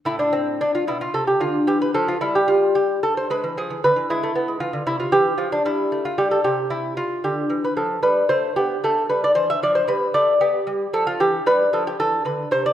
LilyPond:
<<
  \new Staff \with { instrumentName = "Lute" } { \time 12/8 \key a \minor \tempo 4. = 76 e'16 d'16 c'8 d'16 f'16 e'16 f'16 a'16 g'16 f'8 g'16 b'16 a'16 f'16 e'16 g'16 f'8 g'8 a'16 c''16 | b'8 gis'8 b'8 e'4 f'8 e'16 f'16 g'8 f'16 d'16 e'8. f'16 g'16 a'16 | g'8 e'8 f'8 g'8. b'16 a'8 b'8 c''8 g'8 a'8 b'16 d''16 c''16 e''16 | d''16 c''16 b'8 d''8 g'4 a'16 f'16 g'8 b'8 a'16 g'16 a'8 b'8 c''16 d''16 | }
  \new Staff \with { instrumentName = "Lute" } { \clef bass \time 12/8 \key a \minor a,4. b,8 c8 d8 e8 f8 g2 | gis16 e16 f16 e16 d16 e16 gis16 a16 b16 gis16 e16 d16 c8 e8 f8 g8 a8 g8 | c4. d8 e8 f8 g8 a8 b8 a8 g8 e8 | f8 g8 a8 b8 g8 f8 e8 g8 f8 e8 d8 c8 | }
>>